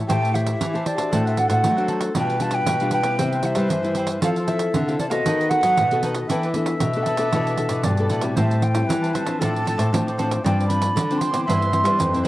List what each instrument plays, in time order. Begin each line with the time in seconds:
0.08 nylon-string guitar A2 A3 E4 G4 C5, clarinet G4, cavaquinho G4 C5 E5 A5, flute G5, pandeiro
0.21 cavaquinho C5 E5 A5, pandeiro
0.33 nylon-string guitar E4 G4 C5, flute E5, muted cavaquinho stroke, pandeiro
0.47 pandeiro
0.61 nylon-string guitar E3, pandeiro
0.73 nylon-string guitar E4 G4 C5, cavaquinho C5 E5 A5, pandeiro
0.85 cavaquinho G4 C5 E5 A5, flute D5, pandeiro
0.96 nylon-string guitar D4 F#4 C5, cavaquinho C5 E5 A5, pandeiro
1.11 nylon-string guitar A2 A3, cavaquinho D4 A4 C5 F#5, clarinet A4, pandeiro
1.25 cavaquinho A4 C5 F#5, flute E5, pandeiro
1.36 nylon-string guitar D4 F#4 C5, flute F#5, muted cavaquinho stroke, pandeiro
1.48 nylon-string guitar A2, cavaquinho A4 C5 F#5, flute F#5, pandeiro
1.64 nylon-string guitar F#3 A3, pandeiro
1.76 nylon-string guitar D4 F#4 C5, cavaquinho A4 C5 F#5, pandeiro
1.88 cavaquinho D4 A4 C5 F#5, pandeiro
2.00 cavaquinho A4 C5 F#5, pandeiro
2.15 nylon-string guitar B2 G3 D4 F4, cavaquinho D4 G4 B4 F5, clarinet B4, flute G5, pandeiro
2.29 cavaquinho G4 B4 F5, pandeiro
2.40 nylon-string guitar G3 D4 F4, flute A5, muted cavaquinho stroke, pandeiro
2.51 flute G5, pandeiro
2.66 nylon-string guitar B2, pandeiro
2.80 nylon-string guitar G3 D4 F4, cavaquinho G4 B4 F5, pandeiro
2.91 cavaquinho D4 G4 B4 F5, flute G5, pandeiro
3.03 nylon-string guitar G3 B3 E4, cavaquinho G4 B4 F5, pandeiro
3.18 nylon-string guitar C3, cavaquinho G4 B4 C5 E5, clarinet C5, pandeiro
3.33 cavaquinho B4 C5 E5, pandeiro
3.43 nylon-string guitar G3 E4, flute E5, muted cavaquinho stroke, pandeiro
3.55 nylon-string guitar G3, cavaquinho B4 C5 E5, pandeiro
3.70 nylon-string guitar G2 E3, pandeiro
3.83 nylon-string guitar G3 E4, cavaquinho B4 E5, pandeiro
3.88 cavaquinho C5
3.95 cavaquinho G4 B4 C5, pandeiro
3.99 cavaquinho E5
4.07 cavaquinho B4 E5, pandeiro
4.11 cavaquinho C5
4.21 nylon-string guitar F3 C4 E4 A4, cavaquinho E4 A4 C5, clarinet A4, flute F5, pandeiro
4.26 cavaquinho F5
4.36 cavaquinho A4 C5 F5, pandeiro
4.47 nylon-string guitar C4 E4 A4, flute E5, muted cavaquinho stroke, pandeiro
4.59 pandeiro
4.74 nylon-string guitar C3 D3, pandeiro
4.88 nylon-string guitar C4 E4 A4, cavaquinho A4 C5 F5, pandeiro
4.99 cavaquinho E4 A4 C5 F5, flute D5, pandeiro
5.09 nylon-string guitar B3 F#4 A4, cavaquinho A4 C5 F5, flute D#5, pandeiro
5.25 nylon-string guitar D#3, cavaquinho D#4 A4 B4 D#5, clarinet B4, pandeiro
5.39 cavaquinho A4 B4 D#5, pandeiro
5.49 nylon-string guitar B3 F#4 A4, flute F#5, muted cavaquinho stroke, pandeiro
5.63 nylon-string guitar F#3, cavaquinho A4 B4 D#5, pandeiro
5.77 nylon-string guitar B2 D#3, pandeiro
5.91 nylon-string guitar B3 F#4 A4, cavaquinho A4 B4 D#5, pandeiro
6.03 cavaquinho D#4 A4 B4 D#5, pandeiro
6.15 cavaquinho A4 B4 D#5, pandeiro
6.20 clarinet D#5
6.27 nylon-string guitar E3 B3 D4, cavaquinho E4 A4 B4, clarinet E5, flute G5, pandeiro
6.32 nylon-string guitar A4, cavaquinho D5
6.43 cavaquinho A4 B4 D5, pandeiro
6.53 nylon-string guitar B3 D4 A4, flute E5, muted cavaquinho stroke, pandeiro
6.66 pandeiro
6.80 nylon-string guitar B2, pandeiro
6.93 nylon-string guitar B3 D4 A4, cavaquinho B4 D5, pandeiro
6.98 cavaquinho A4
7.03 cavaquinho E4, flute A5, pandeiro
7.08 cavaquinho A4 B4 D5
7.17 nylon-string guitar B3 D4 A4, cavaquinho A4 B4 D5, pandeiro
7.33 nylon-string guitar B2 E3 B3 D4 A4, cavaquinho E4 A4 B4 D5, pandeiro
7.47 cavaquinho A4 B4 D5, pandeiro
7.57 nylon-string guitar B3 D4 A4, muted cavaquinho stroke, pandeiro
7.69 nylon-string guitar B2, cavaquinho A4 B4 D5, pandeiro
7.83 nylon-string guitar G2 B2, clarinet D5, pandeiro
7.97 nylon-string guitar B3 D4 A4, cavaquinho A4 B4 D5, pandeiro
8.08 nylon-string guitar A2, cavaquinho E4 A4 B4, clarinet D5, pandeiro
8.13 cavaquinho D5
8.21 nylon-string guitar G3 C4 E4, cavaquinho A4 B4 D5, pandeiro
8.36 nylon-string guitar A2, cavaquinho G4 C5 E5 A5, clarinet C5, pandeiro
8.40 flute E5
8.50 cavaquinho C5 E5 A5, pandeiro
8.62 flute G5, pandeiro
8.74 nylon-string guitar G3 C4 E4, pandeiro
8.88 nylon-string guitar E3, clarinet B4, pandeiro
9.02 cavaquinho C5 E5 A5, pandeiro
9.13 nylon-string guitar G3 C4 E4, cavaquinho G4 C5 E5 A5, flute A5, pandeiro
9.25 nylon-string guitar F3 C4 D4, cavaquinho C5 E5 A5, pandeiro
9.39 nylon-string guitar A2, cavaquinho F4 A4 C5 D5, clarinet A4, flute A5, pandeiro
9.55 cavaquinho A4 D5, pandeiro
9.65 nylon-string guitar F3 C4 D4, pandeiro
9.78 nylon-string guitar A2, cavaquinho A4 C5 D5, pandeiro
9.93 nylon-string guitar A2 F3 C4 D4, clarinet C5, pandeiro
10.07 cavaquinho A4 C5 D5, pandeiro
10.18 nylon-string guitar F3 C4 D4, cavaquinho F4 A4 C5 D5, pandeiro
10.29 cavaquinho A4 C5 D5, pandeiro
10.44 nylon-string guitar G2 F3 C4 D4, cavaquinho F4 G4 C5 D5, clarinet D5, flute G5, pandeiro
10.59 cavaquinho G4 C5 D5, pandeiro
10.68 nylon-string guitar F3 C4 D4, flute B5, muted cavaquinho stroke, pandeiro
10.82 pandeiro
10.96 nylon-string guitar D3, pandeiro
11.09 nylon-string guitar F3 C4 D4, cavaquinho G4 C5 D5, pandeiro
11.18 cavaquinho F4 G4, flute C6, pandeiro
11.22 cavaquinho C5 D5
11.31 nylon-string guitar E3 B3 C4, cavaquinho G4 C5 D5, pandeiro
11.44 nylon-string guitar G2, cavaquinho E4 C5, clarinet E5, flute C6
11.49 cavaquinho B4 E5, pandeiro
11.62 cavaquinho B4 C5 E5, pandeiro
11.73 nylon-string guitar E3 B3 C4, muted cavaquinho stroke, pandeiro
11.84 nylon-string guitar G3, cavaquinho B4 C5 E5, pandeiro
11.92 clarinet D5
11.99 nylon-string guitar F2 G2, clarinet C5, pandeiro
12.13 nylon-string guitar E3 C4, cavaquinho B4 C5 E5, pandeiro
12.23 cavaquinho E4 C5, pandeiro